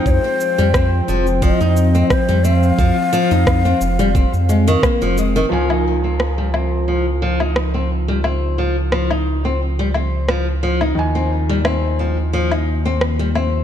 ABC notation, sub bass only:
X:1
M:4/4
L:1/16
Q:"Swing 16ths" 1/4=88
K:Dblyd
V:1 name="Sub bass" clef=bass
F,, z2 F,,3 F,,,3 F,,3 z F,,3 | F,, z2 F,,3 F,,,3 F,,3 z F,,,3 | D,,16- | D,,16 |
E,,16 |]